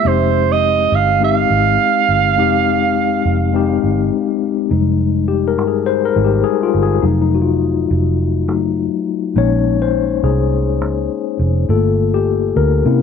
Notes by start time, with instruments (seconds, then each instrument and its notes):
0.03 fingered electric bass F1, tine electric piano G#3 C4 D#4 G4
0.07 alto saxophone C5
0.52 alto saxophone D#5
0.92 fingered electric bass G1, alto saxophone F5
1.20 tine electric piano G#3 C4 D#4 G4
1.24 alto saxophone F5
1.50 fingered electric bass G#1
2.08 fingered electric bass G1
2.36 fingered electric bass F1, tine electric piano G#3 C4 D#4 G4
3.25 fingered electric bass F1
3.53 tine electric piano G#3 C4 D#4 G4
3.83 fingered electric bass G1
4.70 fingered electric bass F1, tine electric piano G3 G#3 D#4
5.28 tine electric piano G4
5.48 tine electric piano A#4
5.58 fingered electric bass G1
5.68 tine electric piano G#4
5.86 tine electric piano C5
6.05 tine electric piano A#4
6.16 fingered electric bass G#1, tine electric piano G3 G#3 D#4
6.24 tine electric piano G4
6.44 tine electric piano G#4
6.63 tine electric piano F4
6.74 fingered electric bass G1
6.83 tine electric piano G#4
7.02 fingered electric bass F1, tine electric piano F#3 A3 D#4
7.22 tine electric piano D#4
7.35 tine electric piano F#4
7.42 tine electric piano F4
7.90 fingered electric bass F1
8.48 fingered electric bass F#1, tine electric piano F#3 A3 D#4
9.36 fingered electric bass A#1, tine electric piano G#3 A#3 C#4 D#4 C#5
9.82 tine electric piano C5
10.23 fingered electric bass C2, tine electric piano G#4
10.81 fingered electric bass C#2
11.39 fingered electric bass F1
11.69 fingered electric bass G1, tine electric piano A3 A#3 F4 A4
12.14 tine electric piano G4
12.56 fingered electric bass D2, tine electric piano A#4
12.85 fingered electric bass C3, tine electric piano A#3 C#4 E4